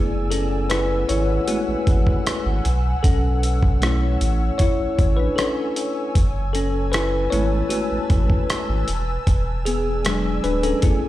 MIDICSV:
0, 0, Header, 1, 5, 480
1, 0, Start_track
1, 0, Key_signature, 3, "minor"
1, 0, Tempo, 779221
1, 1871, Time_signature, 4, 2, 24, 8
1, 6828, End_track
2, 0, Start_track
2, 0, Title_t, "Ambient pad"
2, 0, Program_c, 0, 92
2, 0, Note_on_c, 0, 71, 85
2, 0, Note_on_c, 0, 78, 75
2, 0, Note_on_c, 0, 80, 75
2, 0, Note_on_c, 0, 88, 88
2, 1607, Note_off_c, 0, 80, 0
2, 1616, Note_off_c, 0, 71, 0
2, 1632, Note_on_c, 0, 73, 80
2, 2568, Note_off_c, 0, 78, 0
2, 2593, Note_on_c, 0, 80, 68
2, 3767, Note_off_c, 0, 88, 0
2, 3770, Note_off_c, 0, 73, 0
2, 3789, Note_on_c, 0, 71, 83
2, 3789, Note_on_c, 0, 81, 77
2, 3789, Note_on_c, 0, 88, 92
2, 5447, Note_off_c, 0, 80, 0
2, 5453, Note_off_c, 0, 71, 0
2, 5453, Note_off_c, 0, 81, 0
2, 5467, Note_on_c, 0, 74, 76
2, 5467, Note_on_c, 0, 80, 70
2, 6657, Note_off_c, 0, 74, 0
2, 6828, Note_off_c, 0, 80, 0
2, 6828, Note_off_c, 0, 88, 0
2, 6828, End_track
3, 0, Start_track
3, 0, Title_t, "Tine electric piano"
3, 0, Program_c, 1, 4
3, 0, Note_on_c, 1, 57, 53
3, 0, Note_on_c, 1, 59, 52
3, 0, Note_on_c, 1, 64, 61
3, 0, Note_on_c, 1, 68, 53
3, 53, Control_c, 1, 64, 127
3, 188, Note_on_c, 1, 69, 83
3, 200, Note_on_c, 1, 61, 68
3, 413, Note_off_c, 1, 69, 0
3, 419, Note_off_c, 1, 61, 0
3, 428, Note_on_c, 1, 71, 97
3, 432, Note_off_c, 1, 64, 0
3, 439, Note_on_c, 1, 64, 73
3, 659, Note_off_c, 1, 64, 0
3, 670, Note_on_c, 1, 73, 98
3, 677, Note_off_c, 1, 71, 0
3, 680, Note_on_c, 1, 64, 76
3, 899, Note_off_c, 1, 64, 0
3, 906, Note_off_c, 1, 57, 0
3, 908, Note_off_c, 1, 59, 0
3, 909, Note_on_c, 1, 66, 82
3, 912, Note_on_c, 1, 56, 50
3, 913, Note_on_c, 1, 57, 62
3, 915, Note_on_c, 1, 59, 44
3, 916, Note_on_c, 1, 64, 55
3, 918, Note_off_c, 1, 73, 0
3, 1128, Note_off_c, 1, 56, 0
3, 1129, Note_off_c, 1, 59, 0
3, 1130, Note_off_c, 1, 64, 0
3, 1606, Note_off_c, 1, 66, 0
3, 1608, Note_off_c, 1, 68, 0
3, 1611, Note_off_c, 1, 57, 0
3, 1638, Control_c, 1, 64, 0
3, 1762, Control_c, 1, 64, 127
3, 1865, Note_on_c, 1, 69, 84
3, 1879, Note_on_c, 1, 61, 64
3, 2348, Note_off_c, 1, 61, 0
3, 2352, Note_on_c, 1, 57, 58
3, 2356, Note_on_c, 1, 61, 51
3, 2359, Note_on_c, 1, 64, 61
3, 2804, Note_off_c, 1, 69, 0
3, 2821, Note_on_c, 1, 73, 97
3, 2833, Note_off_c, 1, 64, 0
3, 2841, Note_on_c, 1, 64, 81
3, 3047, Note_off_c, 1, 57, 0
3, 3049, Note_off_c, 1, 61, 0
3, 3171, Note_off_c, 1, 64, 0
3, 3182, Note_on_c, 1, 71, 80
3, 3197, Note_off_c, 1, 73, 0
3, 3200, Note_on_c, 1, 62, 64
3, 3301, Note_on_c, 1, 69, 76
3, 3308, Note_off_c, 1, 62, 0
3, 3311, Note_off_c, 1, 71, 0
3, 3317, Note_on_c, 1, 61, 58
3, 3641, Note_off_c, 1, 69, 0
3, 3650, Note_off_c, 1, 61, 0
3, 3798, Control_c, 1, 64, 0
3, 3918, Control_c, 1, 64, 127
3, 4024, Note_on_c, 1, 69, 86
3, 4038, Note_on_c, 1, 61, 68
3, 4258, Note_off_c, 1, 61, 0
3, 4261, Note_on_c, 1, 71, 94
3, 4275, Note_off_c, 1, 69, 0
3, 4277, Note_on_c, 1, 64, 72
3, 4498, Note_off_c, 1, 64, 0
3, 4499, Note_on_c, 1, 73, 102
3, 4508, Note_on_c, 1, 56, 53
3, 4511, Note_on_c, 1, 57, 50
3, 4513, Note_off_c, 1, 71, 0
3, 4514, Note_on_c, 1, 59, 54
3, 4516, Note_on_c, 1, 64, 78
3, 4738, Note_off_c, 1, 64, 0
3, 4739, Note_on_c, 1, 66, 80
3, 4751, Note_off_c, 1, 57, 0
3, 4752, Note_off_c, 1, 73, 0
3, 4759, Note_on_c, 1, 57, 62
3, 5441, Note_off_c, 1, 66, 0
3, 5445, Note_off_c, 1, 56, 0
3, 5448, Note_off_c, 1, 59, 0
3, 5450, Note_off_c, 1, 57, 0
3, 5480, Control_c, 1, 64, 0
3, 5592, Control_c, 1, 64, 127
3, 5947, Note_on_c, 1, 68, 89
3, 5959, Note_on_c, 1, 59, 73
3, 6188, Note_on_c, 1, 54, 53
3, 6193, Note_on_c, 1, 56, 54
3, 6196, Note_on_c, 1, 62, 61
3, 6411, Note_off_c, 1, 59, 0
3, 6430, Note_on_c, 1, 71, 97
3, 6432, Note_off_c, 1, 62, 0
3, 6439, Note_on_c, 1, 62, 77
3, 6444, Note_off_c, 1, 68, 0
3, 6547, Note_off_c, 1, 62, 0
3, 6551, Note_on_c, 1, 69, 87
3, 6554, Note_off_c, 1, 71, 0
3, 6560, Note_on_c, 1, 61, 70
3, 6646, Note_off_c, 1, 54, 0
3, 6648, Note_off_c, 1, 56, 0
3, 6670, Note_on_c, 1, 68, 54
3, 6673, Note_on_c, 1, 57, 50
3, 6674, Note_on_c, 1, 59, 51
3, 6678, Note_on_c, 1, 64, 64
3, 6679, Control_c, 1, 64, 0
3, 6799, Control_c, 1, 64, 127
3, 6828, Note_off_c, 1, 57, 0
3, 6828, Note_off_c, 1, 59, 0
3, 6828, Note_off_c, 1, 61, 0
3, 6828, Note_off_c, 1, 64, 0
3, 6828, Note_off_c, 1, 68, 0
3, 6828, Note_off_c, 1, 69, 0
3, 6828, End_track
4, 0, Start_track
4, 0, Title_t, "Sub bass"
4, 0, Program_c, 2, 38
4, 0, Note_on_c, 2, 30, 113
4, 648, Note_off_c, 2, 30, 0
4, 676, Note_on_c, 2, 32, 89
4, 858, Note_off_c, 2, 32, 0
4, 1035, Note_on_c, 2, 33, 48
4, 1082, Note_off_c, 2, 33, 0
4, 1154, Note_on_c, 2, 33, 90
4, 1336, Note_off_c, 2, 33, 0
4, 1515, Note_on_c, 2, 32, 95
4, 1605, Note_off_c, 2, 32, 0
4, 1635, Note_on_c, 2, 35, 97
4, 1817, Note_off_c, 2, 35, 0
4, 1875, Note_on_c, 2, 35, 112
4, 2568, Note_off_c, 2, 35, 0
4, 2594, Note_on_c, 2, 33, 97
4, 2776, Note_off_c, 2, 33, 0
4, 2954, Note_on_c, 2, 33, 47
4, 3001, Note_off_c, 2, 33, 0
4, 3074, Note_on_c, 2, 33, 85
4, 3256, Note_off_c, 2, 33, 0
4, 3792, Note_on_c, 2, 30, 113
4, 4487, Note_off_c, 2, 30, 0
4, 4514, Note_on_c, 2, 32, 89
4, 4696, Note_off_c, 2, 32, 0
4, 4876, Note_on_c, 2, 33, 45
4, 4923, Note_off_c, 2, 33, 0
4, 4992, Note_on_c, 2, 33, 82
4, 5175, Note_off_c, 2, 33, 0
4, 5354, Note_on_c, 2, 32, 89
4, 5445, Note_off_c, 2, 32, 0
4, 5475, Note_on_c, 2, 28, 107
4, 5657, Note_off_c, 2, 28, 0
4, 5712, Note_on_c, 2, 28, 105
4, 6407, Note_off_c, 2, 28, 0
4, 6433, Note_on_c, 2, 26, 87
4, 6616, Note_off_c, 2, 26, 0
4, 6673, Note_on_c, 2, 30, 102
4, 6764, Note_off_c, 2, 30, 0
4, 6794, Note_on_c, 2, 32, 47
4, 6828, Note_off_c, 2, 32, 0
4, 6828, End_track
5, 0, Start_track
5, 0, Title_t, "Drums"
5, 194, Note_on_c, 9, 42, 72
5, 256, Note_off_c, 9, 42, 0
5, 430, Note_on_c, 9, 42, 63
5, 438, Note_on_c, 9, 37, 99
5, 491, Note_off_c, 9, 42, 0
5, 500, Note_off_c, 9, 37, 0
5, 672, Note_on_c, 9, 42, 63
5, 734, Note_off_c, 9, 42, 0
5, 909, Note_on_c, 9, 42, 76
5, 970, Note_off_c, 9, 42, 0
5, 1152, Note_on_c, 9, 36, 96
5, 1152, Note_on_c, 9, 42, 54
5, 1213, Note_off_c, 9, 42, 0
5, 1214, Note_off_c, 9, 36, 0
5, 1273, Note_on_c, 9, 36, 89
5, 1335, Note_off_c, 9, 36, 0
5, 1395, Note_on_c, 9, 42, 70
5, 1399, Note_on_c, 9, 37, 118
5, 1457, Note_off_c, 9, 42, 0
5, 1460, Note_off_c, 9, 37, 0
5, 1632, Note_on_c, 9, 42, 63
5, 1694, Note_off_c, 9, 42, 0
5, 1873, Note_on_c, 9, 36, 108
5, 1873, Note_on_c, 9, 42, 80
5, 1934, Note_off_c, 9, 36, 0
5, 1935, Note_off_c, 9, 42, 0
5, 2114, Note_on_c, 9, 42, 73
5, 2176, Note_off_c, 9, 42, 0
5, 2233, Note_on_c, 9, 36, 94
5, 2295, Note_off_c, 9, 36, 0
5, 2353, Note_on_c, 9, 42, 60
5, 2361, Note_on_c, 9, 37, 104
5, 2414, Note_off_c, 9, 42, 0
5, 2423, Note_off_c, 9, 37, 0
5, 2594, Note_on_c, 9, 42, 64
5, 2655, Note_off_c, 9, 42, 0
5, 2828, Note_on_c, 9, 42, 79
5, 2832, Note_on_c, 9, 36, 90
5, 2889, Note_off_c, 9, 42, 0
5, 2894, Note_off_c, 9, 36, 0
5, 3071, Note_on_c, 9, 36, 96
5, 3072, Note_on_c, 9, 42, 53
5, 3133, Note_off_c, 9, 36, 0
5, 3133, Note_off_c, 9, 42, 0
5, 3315, Note_on_c, 9, 42, 70
5, 3318, Note_on_c, 9, 37, 116
5, 3377, Note_off_c, 9, 42, 0
5, 3380, Note_off_c, 9, 37, 0
5, 3550, Note_on_c, 9, 42, 69
5, 3612, Note_off_c, 9, 42, 0
5, 3790, Note_on_c, 9, 36, 101
5, 3791, Note_on_c, 9, 42, 80
5, 3852, Note_off_c, 9, 36, 0
5, 3852, Note_off_c, 9, 42, 0
5, 4033, Note_on_c, 9, 42, 70
5, 4094, Note_off_c, 9, 42, 0
5, 4269, Note_on_c, 9, 42, 58
5, 4277, Note_on_c, 9, 37, 110
5, 4330, Note_off_c, 9, 42, 0
5, 4339, Note_off_c, 9, 37, 0
5, 4511, Note_on_c, 9, 42, 62
5, 4573, Note_off_c, 9, 42, 0
5, 4745, Note_on_c, 9, 42, 79
5, 4807, Note_off_c, 9, 42, 0
5, 4988, Note_on_c, 9, 42, 49
5, 4989, Note_on_c, 9, 36, 94
5, 5050, Note_off_c, 9, 42, 0
5, 5051, Note_off_c, 9, 36, 0
5, 5111, Note_on_c, 9, 36, 88
5, 5172, Note_off_c, 9, 36, 0
5, 5234, Note_on_c, 9, 42, 75
5, 5237, Note_on_c, 9, 37, 114
5, 5295, Note_off_c, 9, 42, 0
5, 5299, Note_off_c, 9, 37, 0
5, 5468, Note_on_c, 9, 42, 65
5, 5530, Note_off_c, 9, 42, 0
5, 5710, Note_on_c, 9, 36, 104
5, 5710, Note_on_c, 9, 42, 77
5, 5772, Note_off_c, 9, 36, 0
5, 5772, Note_off_c, 9, 42, 0
5, 5952, Note_on_c, 9, 42, 69
5, 6014, Note_off_c, 9, 42, 0
5, 6189, Note_on_c, 9, 42, 64
5, 6197, Note_on_c, 9, 37, 108
5, 6250, Note_off_c, 9, 42, 0
5, 6259, Note_off_c, 9, 37, 0
5, 6430, Note_on_c, 9, 42, 38
5, 6492, Note_off_c, 9, 42, 0
5, 6550, Note_on_c, 9, 42, 60
5, 6612, Note_off_c, 9, 42, 0
5, 6667, Note_on_c, 9, 42, 79
5, 6671, Note_on_c, 9, 36, 91
5, 6728, Note_off_c, 9, 42, 0
5, 6733, Note_off_c, 9, 36, 0
5, 6828, End_track
0, 0, End_of_file